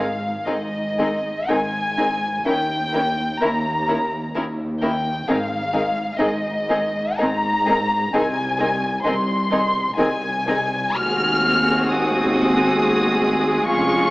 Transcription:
Already playing: double bass section G#1, cello section G#2, violin section F5
0.46 double bass section G#1, cello section G#2, viola section D#3 C4, violin section D#4 G#4 D#5
0.98 viola section D#3 C4, violin section D#4 G#4
1.47 double bass section G#1, cello section G#2, viola section D#3 C4, violin section D#4 G#4 G#5
1.98 viola section D#3 C4, violin section D#4 G#4
2.45 cello section D#2, double bass section D#2, viola section D#3 C#4, violin section E4 A#4 G5
2.93 viola section D#3 C#4, violin section E4 A#4
3.40 cello section D#2, double bass section D#2, viola section D#3 C#4, violin section E4 A#4 A#5
3.88 viola section D#3 C#4, violin section E4 A#4
4.34 cello section D#2, double bass section D#2, viola section D#3 C#4, violin section E4 A#4
4.82 viola section D#3 C#4, violin section E4 A#4 G5
5.28 double bass section G#1, cello section G#2, viola section D#3 C4, violin section D#4 G#4 F5
5.73 viola section D#3 C4, violin section D#4 G#4
6.18 double bass section G#1, cello section G#2, viola section D#3 C4, violin section D#4 G#4 D#5
6.69 viola section D#3 C4, violin section D#4 G#4
7.19 double bass section G#1, cello section G#2, viola section D#3 C4, violin section D#4 G#4 A#5
7.66 viola section D#3 C4, violin section D#4 G#4
8.14 cello section C2, double bass section C2, viola section D#3 C4, violin section D#4 G#4 G#5
8.59 viola section D#3 C4, violin section D#4 G#4
9.05 double bass section C2, cello section C2, viola section D#3 C4, violin section D#4 G#4 C6
9.51 viola section D#3 C4, violin section D#4 G#4
9.96 cello section C2, double bass section C2, viola section D#3 C4, violin section D#4 G#4 G#5
10.46 viola section D#3 C4, violin section D#4 G#4
10.96 cello section D#2, double bass section D#2, viola section G#3 C4, violin section F#4 G#4 F6
11.87 violin section D#6
13.67 double bass section F1, cello section F2, viola section C#4, violin section F4 C#6

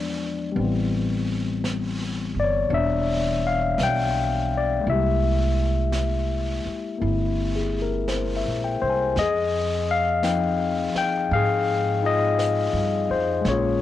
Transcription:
Already playing: upright bass E2, tine electric piano F3 G#3 B3 D4 D5
0.52 tine electric piano G3 B3
0.56 upright bass A1, tine electric piano C4, brush sweep
0.63 tine electric piano E3
1.64 brush sweep, snare, hi-hat pedal
2.34 upright bass G1
2.40 tine electric piano D5
2.44 tine electric piano C#5
2.69 upright bass E1, tine electric piano B3 D4, brush sweep
2.74 tine electric piano E5
3.47 tine electric piano F5
3.78 upright bass B1, brush sweep, snare, hi-hat pedal
3.83 tine electric piano G5
4.57 tine electric piano D5
4.80 tine electric piano G#3 A#3
4.85 upright bass C2, tine electric piano E4, brush sweep
4.90 tine electric piano G4 E5
5.92 brush sweep, snare, hi-hat pedal
6.66 muted upright bass stroke
6.99 upright bass G1, tine electric piano A#3 C4 E4, brush sweep
7.55 tine electric piano G#4
7.82 tine electric piano A#4
8.08 tine electric piano C5, brush sweep, snare, hi-hat pedal
8.36 tine electric piano E5
8.46 upright bass A#1
8.64 tine electric piano G5
8.82 upright bass C2, tine electric piano C5
8.90 tine electric piano G#5
9.16 upright bass F2, tine electric piano D#5, brush sweep, snare
9.21 tine electric piano G#4
9.91 tine electric piano F5
10.23 tine electric piano F3 C4 D#4 G5, brush sweep, snare, hi-hat pedal
10.95 tine electric piano G5, muted upright bass stroke, snare
11.31 upright bass G#2, tine electric piano G#4 F5, brush sweep
12.03 tine electric piano D#4 F4 G#4 D#5
12.39 brush sweep, snare, hi-hat pedal
12.73 upright bass G2
13.10 upright bass F2, tine electric piano C5
13.41 upright bass A#1, tine electric piano G#3 A#3
13.45 tine electric piano C#4 C#5, brush sweep, snare
13.50 tine electric piano F4 G#4

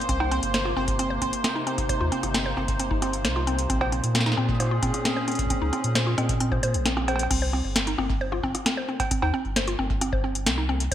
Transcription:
Already playing: analog synth pad A#3 C5, synth texture C5
0.01 closed hi-hat
0.09 sub bass C2, analog synth pad C3, synth arpeggio sound C4, kick, closed hi-hat
0.20 synth arpeggio sound D#4, cross-stick, cowbell
0.31 synth arpeggio sound C4, closed hi-hat
0.43 sub bass G1, closed hi-hat
0.54 synth arpeggio sound C5, snare, closed hi-hat
0.65 synth arpeggio sound F4, cross-stick
0.77 sub bass G1, synth arpeggio sound C4
0.88 kick, closed hi-hat
0.93 analog synth pad D#4
0.99 synth arpeggio sound C4, cross-stick, closed hi-hat
1.10 synth arpeggio sound C5
1.22 sub bass G1, synth arpeggio sound C4, kick, closed hi-hat
1.33 closed hi-hat
1.44 synth arpeggio sound C4, cross-stick, snare, closed hi-hat
1.56 synth arpeggio sound D#4
1.67 synth arpeggio sound C4, closed hi-hat
1.78 kick, cross-stick, closed hi-hat
1.89 synth arpeggio sound C5, kick, closed hi-hat
2.01 sub bass D#2, synth arpeggio sound F4
2.12 synth arpeggio sound C4, closed hi-hat
2.23 sub bass G1, cross-stick, closed hi-hat
2.34 synth arpeggio sound C4, snare, closed hi-hat
2.46 synth arpeggio sound C5
2.57 sub bass G1, synth arpeggio sound C4, cross-stick
2.68 kick, closed hi-hat
2.79 synth arpeggio sound C4, closed hi-hat
2.91 synth arpeggio sound D#4, kick
3.02 synth arpeggio sound C4, cross-stick, closed hi-hat
3.13 closed hi-hat
3.25 sub bass C2, synth arpeggio sound C5, snare, closed hi-hat
3.36 synth arpeggio sound F4, cross-stick
3.47 synth arpeggio sound C4, closed hi-hat
3.59 closed hi-hat
3.70 sub bass A#1, analog synth pad A#2, synth arpeggio sound C4, kick, closed hi-hat
3.81 synth arpeggio sound C5, cross-stick, cowbell
3.92 synth arpeggio sound C4, closed hi-hat
4.03 sub bass A#2, analog synth pad G#4, closed hi-hat
4.15 synth arpeggio sound C4, cross-stick, snare, closed hi-hat
4.21 snare
4.26 synth arpeggio sound D#4, snare
4.32 analog synth pad C#4, snare
4.38 sub bass A#2, synth arpeggio sound C4
4.49 kick
4.60 synth arpeggio sound C5, cross-stick, closed hi-hat
4.62 cross-stick
4.65 cross-stick
4.67 cross-stick
4.69 synth arpeggio sound F4, cross-stick
4.83 sub bass A#2, synth arpeggio sound C4, kick, closed hi-hat
4.94 cross-stick, closed hi-hat
5.05 synth arpeggio sound C4, snare, closed hi-hat
5.16 synth arpeggio sound C5
5.28 synth arpeggio sound C4, closed hi-hat
5.32 closed hi-hat
5.35 kick, closed hi-hat
5.39 closed hi-hat
5.46 kick
5.50 synth arpeggio sound C4, kick, closed hi-hat
5.54 kick
5.62 sub bass C#2, synth arpeggio sound D#4
5.73 synth arpeggio sound C4, cross-stick, closed hi-hat
5.84 sub bass A#2, closed hi-hat
5.95 synth arpeggio sound C5, snare, closed hi-hat
6.07 synth arpeggio sound F4
6.18 sub bass A#2, synth arpeggio sound C4, cross-stick, closed hi-hat
6.29 kick, closed hi-hat
6.40 synth arpeggio sound C4, closed hi-hat
6.52 synth arpeggio sound C5, kick, cross-stick
6.63 sub bass A#2, synth arpeggio sound C5, closed hi-hat
6.74 sub bass A#1, closed hi-hat
6.86 synth arpeggio sound C4, snare, closed hi-hat
6.97 synth arpeggio sound C4, cross-stick
7.08 synth arpeggio sound C5, closed hi-hat, cowbell
7.16 closed hi-hat, cowbell
7.23 cowbell
7.31 sub bass C2, synth arpeggio sound C4, kick, closed hi-hat, crash
7.42 synth arpeggio sound C5
7.53 synth arpeggio sound C4, cross-stick
7.65 sub bass G1
7.76 synth arpeggio sound C4, snare, closed hi-hat
7.87 synth arpeggio sound D#4, closed hi-hat
7.98 sub bass G1, synth arpeggio sound C4, cross-stick
8.10 kick
8.21 synth arpeggio sound C5
8.32 synth arpeggio sound F4, cross-stick
8.43 sub bass G1, synth arpeggio sound C4, kick
8.55 cross-stick, closed hi-hat
8.66 synth arpeggio sound C4, snare, closed hi-hat
8.77 synth arpeggio sound C5
8.89 synth arpeggio sound C4
9.00 kick, closed hi-hat, cowbell
9.11 synth arpeggio sound C4, kick, closed hi-hat
9.22 sub bass D#2, synth arpeggio sound D#4, cowbell
9.34 synth arpeggio sound C4
9.45 sub bass G1
9.56 synth arpeggio sound C5, snare, closed hi-hat
9.67 synth arpeggio sound F4, closed hi-hat
9.79 sub bass G1, synth arpeggio sound C4
9.90 kick
10.01 synth arpeggio sound C4, cross-stick, closed hi-hat
10.13 synth arpeggio sound C5, kick
10.24 synth arpeggio sound C4
10.35 closed hi-hat
10.46 sub bass C2, synth arpeggio sound C4, snare, closed hi-hat
10.58 synth arpeggio sound D#4
10.69 synth arpeggio sound C4
10.80 closed hi-hat

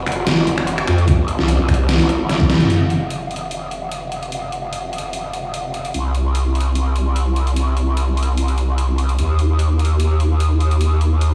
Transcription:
0.06 wobble bass F1, finger snap, closed hi-hat
0.12 closed hi-hat
0.27 snare, closed hi-hat
0.47 wobble bass F1, closed hi-hat
0.58 wobble bass F1, finger snap
0.67 closed hi-hat
0.78 finger snap
0.87 wobble bass F2, finger snap, closed hi-hat
0.98 closed hi-hat
1.08 kick, closed hi-hat
1.19 wobble bass G1
1.28 closed hi-hat
1.39 wobble bass C2, snare
1.48 closed hi-hat
1.59 wobble bass C2
1.69 finger snap, kick, closed hi-hat
1.74 closed hi-hat
1.89 snare, closed hi-hat
2.00 wobble bass G#1, closed hi-hat
2.09 closed hi-hat
2.29 snare, closed hi-hat
2.40 wobble bass G1, kick, high tom
2.50 snare, closed hi-hat
2.60 closed hi-hat, mid tom
2.70 wobble bass F1, closed hi-hat
2.90 closed hi-hat
3.10 closed hi-hat
3.31 closed hi-hat
3.36 closed hi-hat
3.51 closed hi-hat
3.71 closed hi-hat
3.92 closed hi-hat
4.12 closed hi-hat
4.23 closed hi-hat
4.32 closed hi-hat
4.52 closed hi-hat
4.73 closed hi-hat
4.93 closed hi-hat
4.98 closed hi-hat
5.13 closed hi-hat
5.33 closed hi-hat
5.54 closed hi-hat
5.74 closed hi-hat
5.85 closed hi-hat
5.94 wobble bass C2, closed hi-hat
6.15 closed hi-hat
6.35 closed hi-hat
6.55 closed hi-hat
6.61 closed hi-hat
6.75 closed hi-hat
6.96 closed hi-hat
7.16 closed hi-hat
7.36 closed hi-hat
7.47 closed hi-hat
7.56 closed hi-hat
7.77 closed hi-hat
7.97 closed hi-hat
8.17 closed hi-hat
8.23 closed hi-hat
8.37 closed hi-hat
8.48 closed hi-hat
8.58 closed hi-hat
8.78 closed hi-hat
8.98 closed hi-hat
9.09 closed hi-hat
9.19 wobble bass D#2, closed hi-hat
9.39 closed hi-hat
9.59 closed hi-hat
9.79 closed hi-hat
9.85 closed hi-hat
10.00 closed hi-hat
10.20 closed hi-hat
10.40 closed hi-hat
10.60 closed hi-hat
10.71 closed hi-hat
10.81 closed hi-hat
11.01 closed hi-hat
11.21 closed hi-hat

